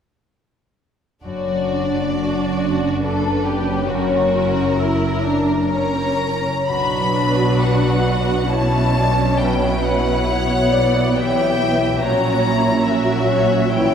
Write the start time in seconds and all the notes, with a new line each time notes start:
1.24 F#1 F#2 D4 F#4 D5
1.48 F#3
1.71 D4
1.93 F#4
2.16 F#4 B4
2.38 D5
2.60 F#5
2.82 D5
3.03 A4 B4
3.24 F#4
3.45 D4 G4
3.66 F#3
3.88 F#2 C#4 F#4 A#4
4.11 C#3
4.33 C#4 E4
4.56 G4
4.78 E4 A#4
5.01 E5
5.24 D4 G5
5.48 E5
5.71 C#4 A#4 C#5 A#5
5.95 G4
6.20 E4
6.46 C#3
6.68 B1 B2 F#3 D4 F#4 B4 B5
7.00 F#3
7.14 F#4
7.30 D4
7.59 F#4 F#5
7.89 B4
8.19 D5
8.48 F#3 C#4 E4 B4 C#5 A5
8.79 F#4
8.95 D4
9.09 F#3
9.39 B2 E4 B4 G5
9.69 B3
9.83 F#5
10.00 E4
10.27 B3 C#5
10.58 C#5
10.73 D5
10.87 E5
11.15 E3 G4 C#5 E5 G5
11.44 G4
11.59 E3
11.74 B3
12.01 A#1 A#2 F#3 C#4 F#4 C#5 A#5
12.31 A#3
12.47 E4
12.59 E4
12.87 F#3 C#4 F#4 A#4 E5
13.16 C#5
13.30 C#5
13.44 E5
13.72 E3 C#4 E4 C#5 G5